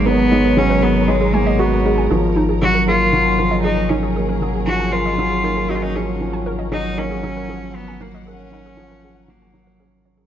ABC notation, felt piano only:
X:1
M:4/4
L:1/8
Q:1/4=117
K:F#
V:1 name="Felt piano" clef=bass
B, G, F, z G, G, F G | E, z F, A, F, E, z F, | A, F, E, z F, A, F E, | E, z F, A, F, E, z F, |
A, F, E, z F, F, C C |]